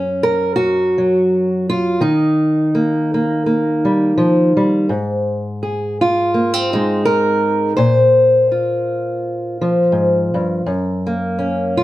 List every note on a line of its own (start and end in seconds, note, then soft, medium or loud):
0.00 1.98 F#2 medium
0.00 1.99 C#4 soft
0.23 0.55 A#4 loud
0.56 1.69 F#4 medium
0.98 1.98 F#3 medium
1.70 2.01 F4 loud
2.01 4.86 D#3 medium
2.01 4.90 D#4 medium
2.75 3.13 A#3 soft
3.14 3.45 A#3 soft
3.46 4.90 A#3 soft
3.85 4.17 G3 medium
4.18 4.56 F3 medium
4.57 4.89 G3 medium
4.89 7.74 G#2 medium
5.63 6.01 G#4 soft
6.01 7.05 F4 medium
6.34 6.54 A#3 soft
6.54 7.78 C4 soft
6.73 7.74 G#3 medium
6.73 7.77 D#4 medium
7.05 7.76 A#4 loud
7.77 9.92 A#2 medium
7.77 10.65 C5 medium
8.52 10.63 F4 soft
9.61 10.65 F3 medium
9.92 10.33 G#2 medium
10.34 10.66 G2 medium
10.66 11.84 F#2 medium
11.07 11.84 A#3 soft
11.39 11.84 C#4 soft
11.77 11.84 F4 medium